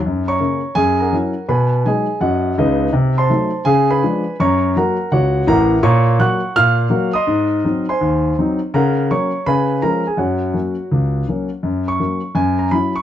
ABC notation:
X:1
M:4/4
L:1/8
Q:"Swing" 1/4=165
K:F#
V:1 name="Grand piano"
z [cac']3 [Gg] [Afa]3 | [Bgb]2 [Gdg]2 [Fdf]2 [DBd]2 | z [=c=a=c']3 [Gg] [Bgb]3 | [cac']2 [Afa]2 [Fcf]2 [Afa]2 |
[cac']2 [fc'f']2 [ee']3 [d^bd']- | [d^bd']3 [^Bgb]3 z2 | [Afa]2 [cac']2 [Bgb]2 [Aa] [Gg] | [Fcf]6- [Fcf] z |
z c'3 g a b c' |]
V:2 name="Grand piano" clef=bass
F,,2 [C,A,C]2 F,,2 [F,C=E]2 | B,,2 [F,G,D]2 F,,2 [C,,C,]2 | =C,2 [_G,=A,_E]2 ^C,2 [^E,^G,=D]2 | F,,2 [F,A,F]2 C,,2 [=A,,,=A,,]2 |
A,,2 [F,A,F]2 A,,2 [F,A,F]2 | G,,2 [F,^B,D]2 D,,2 [F,B,D]2 | C,2 [F,A,C]2 C,2 [E,G,C]2 | F,,2 [F,A,C]2 C,,2 [F,A,C]2 |
F,,2 [F,A,C]2 F,,2 [F,C=E]2 |]